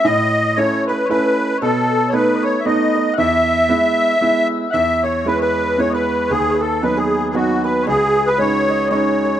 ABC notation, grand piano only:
X:1
M:3/4
L:1/8
Q:"Swing" 1/4=115
K:E
V:1 name="Grand piano"
A,,2 [A,CE]2 [A,CE]2 | B,,2 [A,B,D]2 [A,B,D]2 | E,,2 [G,B,E]2 [G,B,E]2 | E,,2 [G,B,E]2 [G,B,E]2 |
D,,2 [F,B,D]2 [F,B,D]2 | C,,2 [G,CD]2 [G,CD]2 |]